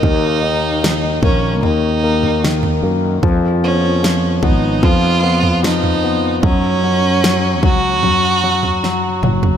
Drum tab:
SD |----o-------o---|----o-------o---|----o-------o---|
T2 |----------------|----------------|--------------o-|
FT |o-----o-o--o-o--|o-----o-o--o-o--|o-----o-o--o---o|
BD |o-----o---------|o-----o-o-------|o-----o---------|